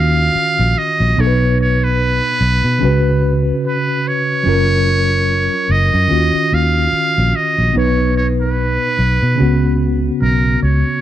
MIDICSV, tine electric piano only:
0, 0, Header, 1, 2, 480
1, 0, Start_track
1, 0, Tempo, 821918
1, 681, Time_signature, 4, 2, 24, 8
1, 6432, End_track
2, 0, Start_track
2, 0, Title_t, "Tine electric piano"
2, 0, Program_c, 0, 4
2, 0, Control_c, 0, 64, 127
2, 0, Note_on_c, 0, 51, 62
2, 0, Note_on_c, 0, 61, 53
2, 0, Note_on_c, 0, 65, 56
2, 0, Note_on_c, 0, 66, 71
2, 656, Note_off_c, 0, 51, 0
2, 662, Note_off_c, 0, 61, 0
2, 666, Note_off_c, 0, 65, 0
2, 667, Note_on_c, 0, 47, 69
2, 673, Note_off_c, 0, 66, 0
2, 681, Note_on_c, 0, 59, 60
2, 687, Control_c, 0, 64, 0
2, 693, Note_on_c, 0, 63, 63
2, 703, Note_on_c, 0, 69, 65
2, 735, Note_off_c, 0, 69, 0
2, 740, Note_on_c, 0, 71, 78
2, 788, Control_c, 0, 64, 127
2, 1615, Note_off_c, 0, 47, 0
2, 1622, Note_off_c, 0, 59, 0
2, 1628, Note_off_c, 0, 63, 0
2, 1628, Note_on_c, 0, 49, 77
2, 1638, Note_on_c, 0, 61, 77
2, 1650, Control_c, 0, 64, 0
2, 1652, Note_off_c, 0, 71, 0
2, 1652, Note_on_c, 0, 66, 73
2, 1664, Note_on_c, 0, 71, 83
2, 1762, Control_c, 0, 64, 127
2, 2575, Note_off_c, 0, 49, 0
2, 2580, Note_off_c, 0, 61, 0
2, 2587, Note_off_c, 0, 66, 0
2, 2589, Note_on_c, 0, 54, 75
2, 2593, Note_off_c, 0, 71, 0
2, 2601, Note_on_c, 0, 61, 61
2, 2607, Control_c, 0, 64, 0
2, 2611, Note_on_c, 0, 65, 65
2, 2620, Note_on_c, 0, 70, 80
2, 2727, Control_c, 0, 64, 127
2, 3535, Note_off_c, 0, 54, 0
2, 3541, Note_off_c, 0, 61, 0
2, 3547, Note_off_c, 0, 65, 0
2, 3547, Note_on_c, 0, 51, 66
2, 3552, Note_off_c, 0, 70, 0
2, 3556, Note_on_c, 0, 61, 57
2, 3568, Control_c, 0, 64, 0
2, 3569, Note_on_c, 0, 65, 58
2, 3581, Note_on_c, 0, 66, 66
2, 3665, Control_c, 0, 64, 127
2, 4495, Note_off_c, 0, 51, 0
2, 4499, Note_off_c, 0, 61, 0
2, 4506, Note_off_c, 0, 65, 0
2, 4508, Note_on_c, 0, 47, 67
2, 4512, Note_off_c, 0, 66, 0
2, 4518, Note_on_c, 0, 59, 68
2, 4528, Control_c, 0, 64, 0
2, 4531, Note_on_c, 0, 63, 67
2, 4540, Note_on_c, 0, 71, 74
2, 4638, Control_c, 0, 64, 127
2, 5455, Note_off_c, 0, 47, 0
2, 5460, Note_off_c, 0, 59, 0
2, 5463, Note_on_c, 0, 49, 73
2, 5467, Note_off_c, 0, 63, 0
2, 5472, Note_off_c, 0, 71, 0
2, 5476, Note_on_c, 0, 61, 69
2, 5488, Control_c, 0, 64, 0
2, 5489, Note_on_c, 0, 66, 69
2, 5500, Note_on_c, 0, 59, 85
2, 5607, Control_c, 0, 64, 127
2, 6412, Note_off_c, 0, 49, 0
2, 6419, Note_off_c, 0, 61, 0
2, 6426, Note_off_c, 0, 66, 0
2, 6431, Note_off_c, 0, 59, 0
2, 6432, End_track
0, 0, End_of_file